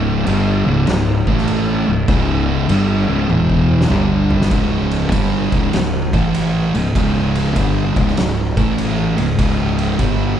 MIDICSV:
0, 0, Header, 1, 4, 480
1, 0, Start_track
1, 0, Tempo, 607903
1, 1649, Time_signature, 4, 2, 24, 8
1, 8210, End_track
2, 0, Start_track
2, 0, Title_t, "Distorted electric guitar"
2, 0, Program_c, 0, 30
2, 0, Note_on_c, 0, 37, 93
2, 0, Note_on_c, 0, 44, 94
2, 0, Note_on_c, 0, 49, 104
2, 207, Note_off_c, 0, 37, 0
2, 209, Note_off_c, 0, 44, 0
2, 210, Note_on_c, 0, 43, 96
2, 212, Note_off_c, 0, 49, 0
2, 214, Note_on_c, 0, 50, 95
2, 220, Note_on_c, 0, 55, 97
2, 518, Note_off_c, 0, 43, 0
2, 520, Note_off_c, 0, 50, 0
2, 523, Note_off_c, 0, 55, 0
2, 525, Note_on_c, 0, 37, 97
2, 530, Note_on_c, 0, 44, 100
2, 537, Note_on_c, 0, 49, 99
2, 686, Note_off_c, 0, 37, 0
2, 689, Note_off_c, 0, 44, 0
2, 692, Note_off_c, 0, 49, 0
2, 695, Note_on_c, 0, 37, 69
2, 697, Note_on_c, 0, 44, 86
2, 946, Note_off_c, 0, 37, 0
2, 947, Note_off_c, 0, 44, 0
2, 1005, Note_on_c, 0, 45, 90
2, 1007, Note_on_c, 0, 52, 98
2, 1013, Note_on_c, 0, 57, 100
2, 1475, Note_off_c, 0, 45, 0
2, 1477, Note_off_c, 0, 52, 0
2, 1480, Note_off_c, 0, 57, 0
2, 1480, Note_on_c, 0, 37, 68
2, 1483, Note_on_c, 0, 44, 68
2, 1614, Note_off_c, 0, 37, 0
2, 1615, Note_off_c, 0, 44, 0
2, 1638, Note_on_c, 0, 37, 91
2, 1646, Note_on_c, 0, 44, 105
2, 1650, Note_on_c, 0, 49, 110
2, 2118, Note_off_c, 0, 37, 0
2, 2121, Note_off_c, 0, 44, 0
2, 2122, Note_on_c, 0, 43, 96
2, 2124, Note_off_c, 0, 49, 0
2, 2125, Note_on_c, 0, 50, 100
2, 2132, Note_on_c, 0, 55, 101
2, 2431, Note_off_c, 0, 43, 0
2, 2433, Note_off_c, 0, 50, 0
2, 2436, Note_off_c, 0, 55, 0
2, 2441, Note_on_c, 0, 37, 105
2, 2446, Note_on_c, 0, 44, 104
2, 2449, Note_on_c, 0, 49, 98
2, 2601, Note_off_c, 0, 37, 0
2, 2604, Note_off_c, 0, 44, 0
2, 2605, Note_off_c, 0, 49, 0
2, 2607, Note_on_c, 0, 40, 88
2, 2610, Note_on_c, 0, 47, 99
2, 2616, Note_on_c, 0, 52, 104
2, 3077, Note_off_c, 0, 40, 0
2, 3080, Note_on_c, 0, 43, 101
2, 3084, Note_off_c, 0, 47, 0
2, 3087, Note_off_c, 0, 52, 0
2, 3089, Note_on_c, 0, 50, 100
2, 3092, Note_on_c, 0, 55, 107
2, 3556, Note_off_c, 0, 43, 0
2, 3559, Note_on_c, 0, 37, 80
2, 3560, Note_off_c, 0, 50, 0
2, 3563, Note_on_c, 0, 44, 81
2, 3565, Note_off_c, 0, 55, 0
2, 3568, Note_on_c, 0, 49, 95
2, 4039, Note_off_c, 0, 37, 0
2, 4041, Note_off_c, 0, 44, 0
2, 4044, Note_off_c, 0, 49, 0
2, 4044, Note_on_c, 0, 43, 92
2, 4050, Note_on_c, 0, 50, 86
2, 4055, Note_on_c, 0, 55, 101
2, 4354, Note_off_c, 0, 43, 0
2, 4356, Note_off_c, 0, 50, 0
2, 4359, Note_off_c, 0, 55, 0
2, 4363, Note_on_c, 0, 37, 90
2, 4369, Note_on_c, 0, 44, 102
2, 4373, Note_on_c, 0, 49, 100
2, 4521, Note_off_c, 0, 37, 0
2, 4526, Note_off_c, 0, 44, 0
2, 4528, Note_off_c, 0, 49, 0
2, 4531, Note_on_c, 0, 37, 67
2, 4534, Note_on_c, 0, 44, 69
2, 4784, Note_off_c, 0, 37, 0
2, 4785, Note_off_c, 0, 44, 0
2, 4842, Note_on_c, 0, 45, 92
2, 4849, Note_on_c, 0, 52, 85
2, 4853, Note_on_c, 0, 57, 92
2, 5316, Note_off_c, 0, 45, 0
2, 5319, Note_off_c, 0, 52, 0
2, 5321, Note_off_c, 0, 57, 0
2, 5329, Note_on_c, 0, 37, 65
2, 5329, Note_on_c, 0, 44, 67
2, 5460, Note_off_c, 0, 37, 0
2, 5460, Note_off_c, 0, 44, 0
2, 5496, Note_on_c, 0, 37, 93
2, 5497, Note_on_c, 0, 44, 95
2, 5504, Note_on_c, 0, 49, 98
2, 5967, Note_off_c, 0, 37, 0
2, 5970, Note_on_c, 0, 43, 92
2, 5971, Note_off_c, 0, 44, 0
2, 5974, Note_off_c, 0, 49, 0
2, 5977, Note_on_c, 0, 50, 105
2, 5982, Note_on_c, 0, 55, 98
2, 6279, Note_off_c, 0, 43, 0
2, 6283, Note_off_c, 0, 50, 0
2, 6285, Note_off_c, 0, 55, 0
2, 6293, Note_on_c, 0, 37, 89
2, 6300, Note_on_c, 0, 44, 101
2, 6303, Note_on_c, 0, 49, 99
2, 6446, Note_off_c, 0, 37, 0
2, 6449, Note_off_c, 0, 44, 0
2, 6455, Note_off_c, 0, 49, 0
2, 6455, Note_on_c, 0, 37, 66
2, 6458, Note_on_c, 0, 44, 69
2, 6708, Note_off_c, 0, 37, 0
2, 6710, Note_off_c, 0, 44, 0
2, 6773, Note_on_c, 0, 45, 100
2, 6779, Note_on_c, 0, 52, 94
2, 6783, Note_on_c, 0, 57, 97
2, 7243, Note_off_c, 0, 45, 0
2, 7246, Note_off_c, 0, 52, 0
2, 7248, Note_off_c, 0, 57, 0
2, 7259, Note_on_c, 0, 37, 59
2, 7266, Note_on_c, 0, 44, 69
2, 7387, Note_off_c, 0, 37, 0
2, 7390, Note_off_c, 0, 44, 0
2, 7419, Note_on_c, 0, 37, 83
2, 7424, Note_on_c, 0, 44, 93
2, 7428, Note_on_c, 0, 49, 93
2, 7891, Note_off_c, 0, 37, 0
2, 7894, Note_on_c, 0, 43, 85
2, 7895, Note_off_c, 0, 44, 0
2, 7898, Note_off_c, 0, 49, 0
2, 7899, Note_on_c, 0, 50, 93
2, 7906, Note_on_c, 0, 55, 98
2, 8202, Note_off_c, 0, 43, 0
2, 8205, Note_off_c, 0, 50, 0
2, 8208, Note_off_c, 0, 55, 0
2, 8210, End_track
3, 0, Start_track
3, 0, Title_t, "Fingered electric bass"
3, 0, Program_c, 1, 33
3, 0, Note_on_c, 1, 25, 89
3, 182, Note_off_c, 1, 25, 0
3, 219, Note_on_c, 1, 31, 105
3, 510, Note_off_c, 1, 31, 0
3, 532, Note_on_c, 1, 25, 105
3, 683, Note_off_c, 1, 25, 0
3, 701, Note_on_c, 1, 25, 78
3, 991, Note_off_c, 1, 25, 0
3, 1006, Note_on_c, 1, 33, 98
3, 1454, Note_off_c, 1, 33, 0
3, 1491, Note_on_c, 1, 25, 80
3, 1641, Note_off_c, 1, 25, 0
3, 1644, Note_on_c, 1, 25, 100
3, 2094, Note_off_c, 1, 25, 0
3, 2133, Note_on_c, 1, 31, 109
3, 2424, Note_off_c, 1, 31, 0
3, 2448, Note_on_c, 1, 25, 98
3, 2598, Note_off_c, 1, 25, 0
3, 2609, Note_on_c, 1, 28, 95
3, 3056, Note_off_c, 1, 28, 0
3, 3086, Note_on_c, 1, 31, 101
3, 3535, Note_off_c, 1, 31, 0
3, 3563, Note_on_c, 1, 25, 91
3, 4014, Note_off_c, 1, 25, 0
3, 4044, Note_on_c, 1, 31, 94
3, 4340, Note_off_c, 1, 31, 0
3, 4361, Note_on_c, 1, 25, 96
3, 4515, Note_off_c, 1, 25, 0
3, 4533, Note_on_c, 1, 25, 72
3, 4826, Note_off_c, 1, 25, 0
3, 4844, Note_on_c, 1, 33, 85
3, 5295, Note_off_c, 1, 33, 0
3, 5334, Note_on_c, 1, 25, 79
3, 5484, Note_off_c, 1, 25, 0
3, 5490, Note_on_c, 1, 25, 85
3, 5940, Note_off_c, 1, 25, 0
3, 5972, Note_on_c, 1, 31, 91
3, 6267, Note_off_c, 1, 31, 0
3, 6288, Note_on_c, 1, 25, 100
3, 6441, Note_off_c, 1, 25, 0
3, 6464, Note_on_c, 1, 25, 75
3, 6754, Note_off_c, 1, 25, 0
3, 6769, Note_on_c, 1, 33, 91
3, 7219, Note_off_c, 1, 33, 0
3, 7257, Note_on_c, 1, 25, 85
3, 7407, Note_off_c, 1, 25, 0
3, 7414, Note_on_c, 1, 25, 83
3, 7864, Note_off_c, 1, 25, 0
3, 7894, Note_on_c, 1, 31, 97
3, 8189, Note_off_c, 1, 31, 0
3, 8210, End_track
4, 0, Start_track
4, 0, Title_t, "Drums"
4, 209, Note_on_c, 9, 49, 66
4, 288, Note_off_c, 9, 49, 0
4, 686, Note_on_c, 9, 49, 63
4, 692, Note_on_c, 9, 38, 126
4, 765, Note_off_c, 9, 49, 0
4, 771, Note_off_c, 9, 38, 0
4, 1003, Note_on_c, 9, 36, 78
4, 1082, Note_off_c, 9, 36, 0
4, 1090, Note_on_c, 9, 38, 37
4, 1165, Note_on_c, 9, 49, 64
4, 1169, Note_off_c, 9, 38, 0
4, 1244, Note_off_c, 9, 49, 0
4, 1643, Note_on_c, 9, 49, 64
4, 1645, Note_on_c, 9, 36, 114
4, 1722, Note_off_c, 9, 49, 0
4, 1724, Note_off_c, 9, 36, 0
4, 2126, Note_on_c, 9, 49, 68
4, 2205, Note_off_c, 9, 49, 0
4, 2603, Note_on_c, 9, 48, 71
4, 2682, Note_off_c, 9, 48, 0
4, 2760, Note_on_c, 9, 36, 67
4, 2839, Note_off_c, 9, 36, 0
4, 3007, Note_on_c, 9, 38, 78
4, 3081, Note_on_c, 9, 45, 86
4, 3086, Note_off_c, 9, 38, 0
4, 3160, Note_off_c, 9, 45, 0
4, 3399, Note_on_c, 9, 43, 105
4, 3478, Note_off_c, 9, 43, 0
4, 3486, Note_on_c, 9, 38, 96
4, 3562, Note_on_c, 9, 36, 96
4, 3563, Note_on_c, 9, 51, 83
4, 3565, Note_off_c, 9, 38, 0
4, 3641, Note_off_c, 9, 36, 0
4, 3642, Note_off_c, 9, 51, 0
4, 3880, Note_on_c, 9, 51, 68
4, 3959, Note_off_c, 9, 51, 0
4, 4043, Note_on_c, 9, 36, 103
4, 4043, Note_on_c, 9, 51, 92
4, 4122, Note_off_c, 9, 36, 0
4, 4122, Note_off_c, 9, 51, 0
4, 4361, Note_on_c, 9, 36, 100
4, 4362, Note_on_c, 9, 51, 63
4, 4440, Note_off_c, 9, 36, 0
4, 4441, Note_off_c, 9, 51, 0
4, 4526, Note_on_c, 9, 51, 91
4, 4532, Note_on_c, 9, 38, 110
4, 4605, Note_off_c, 9, 51, 0
4, 4611, Note_off_c, 9, 38, 0
4, 4842, Note_on_c, 9, 36, 94
4, 4844, Note_on_c, 9, 51, 66
4, 4921, Note_off_c, 9, 36, 0
4, 4923, Note_off_c, 9, 51, 0
4, 5010, Note_on_c, 9, 51, 86
4, 5089, Note_off_c, 9, 51, 0
4, 5328, Note_on_c, 9, 51, 72
4, 5407, Note_off_c, 9, 51, 0
4, 5490, Note_on_c, 9, 36, 97
4, 5492, Note_on_c, 9, 51, 96
4, 5569, Note_off_c, 9, 36, 0
4, 5571, Note_off_c, 9, 51, 0
4, 5807, Note_on_c, 9, 51, 73
4, 5886, Note_off_c, 9, 51, 0
4, 5969, Note_on_c, 9, 51, 100
4, 5970, Note_on_c, 9, 36, 100
4, 6048, Note_off_c, 9, 51, 0
4, 6049, Note_off_c, 9, 36, 0
4, 6288, Note_on_c, 9, 36, 98
4, 6290, Note_on_c, 9, 51, 65
4, 6367, Note_off_c, 9, 36, 0
4, 6369, Note_off_c, 9, 51, 0
4, 6378, Note_on_c, 9, 38, 32
4, 6453, Note_on_c, 9, 51, 96
4, 6457, Note_off_c, 9, 38, 0
4, 6460, Note_on_c, 9, 38, 109
4, 6532, Note_off_c, 9, 51, 0
4, 6539, Note_off_c, 9, 38, 0
4, 6769, Note_on_c, 9, 36, 94
4, 6769, Note_on_c, 9, 51, 68
4, 6848, Note_off_c, 9, 36, 0
4, 6848, Note_off_c, 9, 51, 0
4, 6935, Note_on_c, 9, 51, 88
4, 7014, Note_off_c, 9, 51, 0
4, 7247, Note_on_c, 9, 51, 67
4, 7326, Note_off_c, 9, 51, 0
4, 7412, Note_on_c, 9, 36, 102
4, 7412, Note_on_c, 9, 51, 91
4, 7491, Note_off_c, 9, 36, 0
4, 7491, Note_off_c, 9, 51, 0
4, 7727, Note_on_c, 9, 51, 69
4, 7806, Note_off_c, 9, 51, 0
4, 7887, Note_on_c, 9, 51, 86
4, 7891, Note_on_c, 9, 36, 109
4, 7966, Note_off_c, 9, 51, 0
4, 7970, Note_off_c, 9, 36, 0
4, 8210, End_track
0, 0, End_of_file